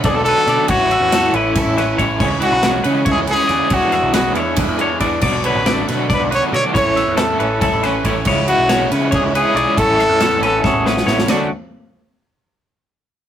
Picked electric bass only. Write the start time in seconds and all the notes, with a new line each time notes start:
0.13 B1
0.47 B2
0.69 A1
1.00 E2
1.33 A1
1.66 A1
1.99 A1
2.20 C#2
2.52 B1
2.85 C#3
3.17 C#2
3.49 D#2
3.71 E2
4.02 B1
4.34 E2
4.69 E2
5.00 E2
5.21 B1
5.55 A1
5.89 B2
6.21 B1
6.53 B2
6.75 A1
7.08 E2
7.40 A1
7.73 A1
8.04 A1
8.26 C#2
8.59 B1
8.91 C#3
9.23 C#2
9.55 B1
9.77 A1
10.09 E2
10.41 A1
10.73 A1
11.06 A1
11.27 D2